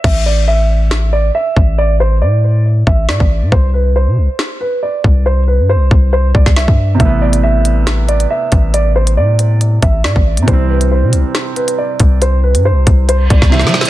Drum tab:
CC |x-----------------------------------------------|------------------------------------------------|------------------------------------------------|------------------------------------------------|
HH |------------------------------------------------|------------------------------------------------|------------------------------------------------|------------------------------------------------|
SD |------------------------o-----------------------|------------------------------------o-----------|------------------------o-----------------------|---------------------------------o--o-----------|
BD |o-----------------------------------------o-----|------------------------------o--------o--------|o-----------------------------------------o-----|------------------o-----------o--o-----o--------|

CC |------------------------------------------------|------------------------------------------------|------------------------------------------------|------------------------------------------------|
HH |x--------x--------x-----x-----x--x--------x-----|x--------x--------x-----x-----x--------------x--|x--------x--------x-----x-----x--x--------x-----|x--------x--------x-----x-----x--------------x--|
SD |------------------------o-----------------------|------------------------------------o-----------|------------------------o-----------------------|---------------------------------o--o-o-o-o-o---|
BD |o-----------------------------------------o-----|------------------------------o--------o--------|o-----------------------------------------o-----|------------------o-----------o--o--------------|